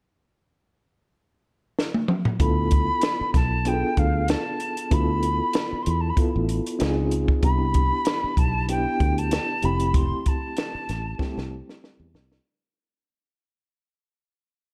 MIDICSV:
0, 0, Header, 1, 6, 480
1, 0, Start_track
1, 0, Tempo, 627615
1, 1836, Time_signature, 4, 2, 24, 8
1, 11266, End_track
2, 0, Start_track
2, 0, Title_t, "Flute"
2, 0, Program_c, 0, 73
2, 1844, Note_on_c, 0, 83, 86
2, 2530, Note_off_c, 0, 83, 0
2, 2565, Note_on_c, 0, 81, 84
2, 2812, Note_on_c, 0, 79, 88
2, 2823, Note_off_c, 0, 81, 0
2, 3050, Note_on_c, 0, 77, 77
2, 3061, Note_off_c, 0, 79, 0
2, 3287, Note_on_c, 0, 81, 76
2, 3298, Note_off_c, 0, 77, 0
2, 3773, Note_on_c, 0, 83, 74
2, 3784, Note_off_c, 0, 81, 0
2, 4454, Note_on_c, 0, 84, 63
2, 4465, Note_off_c, 0, 83, 0
2, 4515, Note_on_c, 0, 83, 61
2, 4527, Note_off_c, 0, 84, 0
2, 4593, Note_on_c, 0, 81, 66
2, 4604, Note_off_c, 0, 83, 0
2, 4660, Note_on_c, 0, 83, 76
2, 4672, Note_off_c, 0, 81, 0
2, 4723, Note_off_c, 0, 83, 0
2, 5687, Note_on_c, 0, 83, 87
2, 6412, Note_on_c, 0, 81, 81
2, 6423, Note_off_c, 0, 83, 0
2, 6647, Note_off_c, 0, 81, 0
2, 6654, Note_on_c, 0, 79, 83
2, 7023, Note_on_c, 0, 81, 93
2, 7035, Note_off_c, 0, 79, 0
2, 7379, Note_on_c, 0, 83, 90
2, 7390, Note_off_c, 0, 81, 0
2, 7616, Note_on_c, 0, 84, 87
2, 7627, Note_off_c, 0, 83, 0
2, 7860, Note_on_c, 0, 81, 89
2, 7872, Note_off_c, 0, 84, 0
2, 8810, Note_off_c, 0, 81, 0
2, 11266, End_track
3, 0, Start_track
3, 0, Title_t, "Reed electric piano"
3, 0, Program_c, 1, 4
3, 1830, Note_on_c, 1, 59, 65
3, 1837, Note_on_c, 1, 64, 58
3, 1839, Note_on_c, 1, 65, 56
3, 1842, Note_on_c, 1, 69, 79
3, 1984, Control_c, 1, 64, 127
3, 2565, Note_off_c, 1, 59, 0
3, 2569, Note_off_c, 1, 64, 0
3, 2570, Note_off_c, 1, 65, 0
3, 2571, Note_off_c, 1, 69, 0
3, 2792, Note_on_c, 1, 59, 63
3, 2797, Note_on_c, 1, 62, 56
3, 2803, Note_on_c, 1, 65, 52
3, 2806, Note_on_c, 1, 68, 52
3, 2856, Note_off_c, 1, 68, 0
3, 2857, Note_on_c, 1, 69, 74
3, 3527, Note_off_c, 1, 59, 0
3, 3529, Note_off_c, 1, 62, 0
3, 3532, Note_off_c, 1, 65, 0
3, 3560, Note_off_c, 1, 69, 0
3, 3751, Note_on_c, 1, 59, 69
3, 3755, Note_on_c, 1, 64, 62
3, 3760, Note_on_c, 1, 65, 58
3, 3765, Note_on_c, 1, 69, 67
3, 4487, Note_off_c, 1, 59, 0
3, 4489, Note_off_c, 1, 64, 0
3, 4492, Note_off_c, 1, 65, 0
3, 4495, Note_off_c, 1, 69, 0
3, 4712, Note_on_c, 1, 59, 64
3, 4716, Note_on_c, 1, 64, 57
3, 4721, Note_on_c, 1, 65, 58
3, 4725, Note_on_c, 1, 69, 65
3, 5191, Note_on_c, 1, 60, 77
3, 5192, Note_off_c, 1, 65, 0
3, 5195, Note_on_c, 1, 63, 79
3, 5197, Note_off_c, 1, 59, 0
3, 5199, Note_off_c, 1, 64, 0
3, 5201, Note_on_c, 1, 65, 74
3, 5203, Note_off_c, 1, 69, 0
3, 5207, Note_on_c, 1, 68, 96
3, 5210, Control_c, 1, 64, 0
3, 5344, Control_c, 1, 64, 127
3, 5589, Note_off_c, 1, 60, 0
3, 5591, Note_off_c, 1, 63, 0
3, 5593, Note_off_c, 1, 65, 0
3, 5597, Note_off_c, 1, 68, 0
3, 5673, Note_on_c, 1, 59, 60
3, 5677, Note_on_c, 1, 62, 60
3, 5683, Note_on_c, 1, 64, 60
3, 5687, Note_on_c, 1, 67, 74
3, 5693, Control_c, 1, 64, 0
3, 5814, Control_c, 1, 64, 127
3, 6409, Note_off_c, 1, 59, 0
3, 6412, Note_off_c, 1, 62, 0
3, 6414, Note_off_c, 1, 64, 0
3, 6417, Note_off_c, 1, 67, 0
3, 6638, Note_on_c, 1, 59, 64
3, 6641, Note_on_c, 1, 62, 59
3, 6647, Note_on_c, 1, 64, 57
3, 6652, Note_on_c, 1, 67, 75
3, 7356, Note_on_c, 1, 57, 63
3, 7358, Note_off_c, 1, 64, 0
3, 7360, Note_off_c, 1, 67, 0
3, 7361, Note_off_c, 1, 59, 0
3, 7362, Note_off_c, 1, 62, 0
3, 7362, Note_on_c, 1, 60, 56
3, 7367, Note_on_c, 1, 64, 60
3, 7369, Note_on_c, 1, 67, 72
3, 7373, Control_c, 1, 64, 0
3, 7483, Control_c, 1, 64, 127
3, 8131, Note_off_c, 1, 57, 0
3, 8134, Note_off_c, 1, 60, 0
3, 8136, Note_off_c, 1, 64, 0
3, 8137, Note_off_c, 1, 67, 0
3, 8555, Note_on_c, 1, 55, 58
3, 8560, Note_on_c, 1, 60, 78
3, 8564, Note_on_c, 1, 64, 70
3, 8569, Note_on_c, 1, 67, 81
3, 8605, Note_on_c, 1, 57, 82
3, 8612, Note_off_c, 1, 55, 0
3, 9290, Note_off_c, 1, 60, 0
3, 9293, Note_off_c, 1, 64, 0
3, 9295, Note_off_c, 1, 67, 0
3, 9313, Note_off_c, 1, 57, 0
3, 9530, Control_c, 1, 64, 0
3, 11266, End_track
4, 0, Start_track
4, 0, Title_t, "Fingered electric bass"
4, 0, Program_c, 2, 33
4, 1838, Note_on_c, 2, 38, 79
4, 2204, Note_off_c, 2, 38, 0
4, 2559, Note_on_c, 2, 35, 73
4, 2925, Note_off_c, 2, 35, 0
4, 3043, Note_on_c, 2, 38, 69
4, 3323, Note_off_c, 2, 38, 0
4, 3763, Note_on_c, 2, 38, 95
4, 4128, Note_off_c, 2, 38, 0
4, 4489, Note_on_c, 2, 40, 77
4, 4669, Note_off_c, 2, 40, 0
4, 4862, Note_on_c, 2, 33, 76
4, 5041, Note_off_c, 2, 33, 0
4, 5211, Note_on_c, 2, 37, 96
4, 5574, Note_off_c, 2, 37, 0
4, 5685, Note_on_c, 2, 36, 87
4, 6050, Note_off_c, 2, 36, 0
4, 6406, Note_on_c, 2, 35, 65
4, 6771, Note_off_c, 2, 35, 0
4, 6888, Note_on_c, 2, 38, 74
4, 7168, Note_off_c, 2, 38, 0
4, 7371, Note_on_c, 2, 29, 79
4, 7734, Note_off_c, 2, 29, 0
4, 8331, Note_on_c, 2, 33, 83
4, 8511, Note_off_c, 2, 33, 0
4, 8699, Note_on_c, 2, 36, 71
4, 8879, Note_off_c, 2, 36, 0
4, 9174, Note_on_c, 2, 40, 76
4, 9287, Note_on_c, 2, 36, 79
4, 9298, Note_off_c, 2, 40, 0
4, 9467, Note_off_c, 2, 36, 0
4, 11266, End_track
5, 0, Start_track
5, 0, Title_t, "Muted fingered electric bass strokes"
5, 2454, Note_on_c, 9, 29, 36
5, 2530, Note_off_c, 9, 29, 0
5, 4380, Note_on_c, 9, 29, 37
5, 4456, Note_off_c, 9, 29, 0
5, 4724, Note_on_c, 9, 29, 36
5, 4801, Note_off_c, 9, 29, 0
5, 6301, Note_on_c, 9, 29, 37
5, 6378, Note_off_c, 9, 29, 0
5, 8219, Note_on_c, 9, 29, 35
5, 8296, Note_off_c, 9, 29, 0
5, 8562, Note_on_c, 9, 29, 37
5, 8639, Note_off_c, 9, 29, 0
5, 11266, End_track
6, 0, Start_track
6, 0, Title_t, "Drums"
6, 1366, Note_on_c, 9, 38, 63
6, 1442, Note_off_c, 9, 38, 0
6, 1487, Note_on_c, 9, 48, 61
6, 1563, Note_off_c, 9, 48, 0
6, 1593, Note_on_c, 9, 47, 67
6, 1670, Note_off_c, 9, 47, 0
6, 1723, Note_on_c, 9, 43, 83
6, 1799, Note_off_c, 9, 43, 0
6, 1833, Note_on_c, 9, 42, 77
6, 1834, Note_on_c, 9, 36, 103
6, 1910, Note_off_c, 9, 42, 0
6, 1911, Note_off_c, 9, 36, 0
6, 2071, Note_on_c, 9, 42, 60
6, 2079, Note_on_c, 9, 36, 78
6, 2147, Note_off_c, 9, 42, 0
6, 2155, Note_off_c, 9, 36, 0
6, 2305, Note_on_c, 9, 42, 86
6, 2319, Note_on_c, 9, 38, 89
6, 2382, Note_off_c, 9, 42, 0
6, 2395, Note_off_c, 9, 38, 0
6, 2555, Note_on_c, 9, 36, 85
6, 2556, Note_on_c, 9, 42, 59
6, 2560, Note_on_c, 9, 38, 33
6, 2631, Note_off_c, 9, 36, 0
6, 2633, Note_off_c, 9, 42, 0
6, 2637, Note_off_c, 9, 38, 0
6, 2793, Note_on_c, 9, 42, 77
6, 2870, Note_off_c, 9, 42, 0
6, 3037, Note_on_c, 9, 42, 50
6, 3039, Note_on_c, 9, 36, 76
6, 3113, Note_off_c, 9, 42, 0
6, 3115, Note_off_c, 9, 36, 0
6, 3275, Note_on_c, 9, 42, 76
6, 3288, Note_on_c, 9, 38, 84
6, 3352, Note_off_c, 9, 42, 0
6, 3364, Note_off_c, 9, 38, 0
6, 3517, Note_on_c, 9, 42, 52
6, 3594, Note_off_c, 9, 42, 0
6, 3649, Note_on_c, 9, 42, 46
6, 3725, Note_off_c, 9, 42, 0
6, 3757, Note_on_c, 9, 42, 81
6, 3759, Note_on_c, 9, 36, 96
6, 3834, Note_off_c, 9, 42, 0
6, 3835, Note_off_c, 9, 36, 0
6, 3997, Note_on_c, 9, 42, 57
6, 4074, Note_off_c, 9, 42, 0
6, 4233, Note_on_c, 9, 42, 80
6, 4246, Note_on_c, 9, 38, 93
6, 4309, Note_off_c, 9, 42, 0
6, 4323, Note_off_c, 9, 38, 0
6, 4482, Note_on_c, 9, 42, 64
6, 4559, Note_off_c, 9, 42, 0
6, 4718, Note_on_c, 9, 36, 82
6, 4719, Note_on_c, 9, 42, 81
6, 4795, Note_off_c, 9, 36, 0
6, 4795, Note_off_c, 9, 42, 0
6, 4962, Note_on_c, 9, 42, 54
6, 5038, Note_off_c, 9, 42, 0
6, 5097, Note_on_c, 9, 42, 55
6, 5173, Note_off_c, 9, 42, 0
6, 5200, Note_on_c, 9, 42, 70
6, 5213, Note_on_c, 9, 38, 85
6, 5276, Note_off_c, 9, 42, 0
6, 5289, Note_off_c, 9, 38, 0
6, 5441, Note_on_c, 9, 42, 51
6, 5517, Note_off_c, 9, 42, 0
6, 5570, Note_on_c, 9, 36, 76
6, 5647, Note_off_c, 9, 36, 0
6, 5680, Note_on_c, 9, 42, 77
6, 5681, Note_on_c, 9, 36, 94
6, 5756, Note_off_c, 9, 42, 0
6, 5758, Note_off_c, 9, 36, 0
6, 5920, Note_on_c, 9, 42, 58
6, 5926, Note_on_c, 9, 36, 74
6, 5997, Note_off_c, 9, 42, 0
6, 6003, Note_off_c, 9, 36, 0
6, 6157, Note_on_c, 9, 42, 78
6, 6170, Note_on_c, 9, 38, 92
6, 6234, Note_off_c, 9, 42, 0
6, 6247, Note_off_c, 9, 38, 0
6, 6402, Note_on_c, 9, 36, 90
6, 6406, Note_on_c, 9, 42, 67
6, 6479, Note_off_c, 9, 36, 0
6, 6482, Note_off_c, 9, 42, 0
6, 6644, Note_on_c, 9, 42, 83
6, 6720, Note_off_c, 9, 42, 0
6, 6885, Note_on_c, 9, 36, 73
6, 6885, Note_on_c, 9, 42, 48
6, 6961, Note_off_c, 9, 42, 0
6, 6962, Note_off_c, 9, 36, 0
6, 7020, Note_on_c, 9, 42, 48
6, 7097, Note_off_c, 9, 42, 0
6, 7122, Note_on_c, 9, 42, 82
6, 7135, Note_on_c, 9, 38, 82
6, 7199, Note_off_c, 9, 42, 0
6, 7211, Note_off_c, 9, 38, 0
6, 7360, Note_on_c, 9, 42, 52
6, 7437, Note_off_c, 9, 42, 0
6, 7493, Note_on_c, 9, 42, 51
6, 7569, Note_off_c, 9, 42, 0
6, 7604, Note_on_c, 9, 36, 102
6, 7604, Note_on_c, 9, 42, 81
6, 7680, Note_off_c, 9, 42, 0
6, 7681, Note_off_c, 9, 36, 0
6, 7845, Note_on_c, 9, 42, 60
6, 7849, Note_on_c, 9, 36, 78
6, 7922, Note_off_c, 9, 42, 0
6, 7925, Note_off_c, 9, 36, 0
6, 8081, Note_on_c, 9, 42, 75
6, 8094, Note_on_c, 9, 38, 91
6, 8157, Note_off_c, 9, 42, 0
6, 8171, Note_off_c, 9, 38, 0
6, 8328, Note_on_c, 9, 42, 59
6, 8332, Note_on_c, 9, 38, 33
6, 8405, Note_off_c, 9, 42, 0
6, 8409, Note_off_c, 9, 38, 0
6, 8560, Note_on_c, 9, 36, 82
6, 8577, Note_on_c, 9, 38, 45
6, 8637, Note_off_c, 9, 36, 0
6, 8653, Note_off_c, 9, 38, 0
6, 8703, Note_on_c, 9, 38, 46
6, 8779, Note_off_c, 9, 38, 0
6, 8944, Note_on_c, 9, 38, 57
6, 9021, Note_off_c, 9, 38, 0
6, 9055, Note_on_c, 9, 38, 65
6, 9131, Note_off_c, 9, 38, 0
6, 9292, Note_on_c, 9, 38, 68
6, 9368, Note_off_c, 9, 38, 0
6, 9420, Note_on_c, 9, 38, 72
6, 9497, Note_off_c, 9, 38, 0
6, 11266, End_track
0, 0, End_of_file